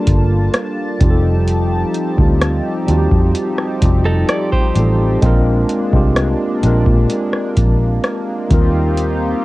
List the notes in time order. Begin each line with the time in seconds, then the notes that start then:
Already playing: G3 A#3 D4 F4 A4 A#4 A5
0.07 G1, kick, closed hi-hat
0.54 cross-stick, closed hi-hat
0.99 F1 F3 G3 C4 D#4 F4 G4, kick, closed hi-hat
1.04 G4
1.10 A4
1.48 closed hi-hat
1.94 closed hi-hat
2.17 D2 G3 C4 D#4 F4, kick
2.21 G4
2.41 cross-stick, closed hi-hat
2.87 D#2 G3 C4 D#4 F4, closed hi-hat
2.91 F#4
2.98 G4
3.11 F2, kick
3.35 closed hi-hat
3.58 cross-stick
3.81 F1 G3 C4 D#4 F4, kick, closed hi-hat
3.85 G4
4.05 D#4 A4
4.29 A4 D5, cross-stick, closed hi-hat
4.52 G4 C5, kick
4.75 A1 G3 C4 D#4 F4, closed hi-hat
4.79 A4
5.21 A#1 G#3 A#3 C4 D4 F4, kick, closed hi-hat
5.26 A#4
5.69 closed hi-hat
5.92 C2 G#3 C4 D4 F4, kick
5.96 G4
6.16 cross-stick, closed hi-hat
6.62 A#1 G#3 C4 D4 F4, closed hi-hat
6.67 A#4
6.86 A#2, kick
7.10 closed hi-hat
7.33 cross-stick
7.57 A#1, kick, closed hi-hat
8.04 cross-stick, closed hi-hat
8.49 D#2 G3 C4 D#4 F4 G4, kick, closed hi-hat
8.54 A#4
8.98 closed hi-hat